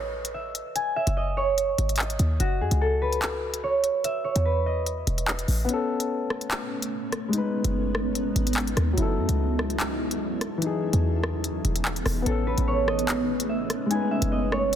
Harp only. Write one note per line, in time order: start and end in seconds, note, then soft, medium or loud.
0.00 0.82 A4 medium
0.00 1.37 B4 medium
0.00 1.37 C#5 medium
0.00 0.40 D#5 medium
0.34 0.96 E5 medium
0.76 2.26 G#5 medium
0.96 1.23 E5 medium
1.17 1.99 D#5 medium
1.37 3.28 C#5 medium
1.99 3.77 D#5 medium
2.40 4.84 F#4 loud
2.61 2.87 G#4 medium
2.81 5.01 A4 medium
3.02 4.45 B4 medium
3.63 4.24 C#5 medium
4.05 4.72 E5 medium
4.24 6.16 C#5 medium
4.45 6.50 B4 medium
4.66 6.45 D#5 medium
12.26 13.96 A4 medium
12.47 14.52 B4 medium
12.68 14.52 C#5 medium
12.88 13.55 D#5 medium
13.49 14.11 E5 medium
13.90 14.76 G#5 medium
14.11 14.38 E5 medium
14.32 14.76 D#5 medium
14.52 14.76 C#5 medium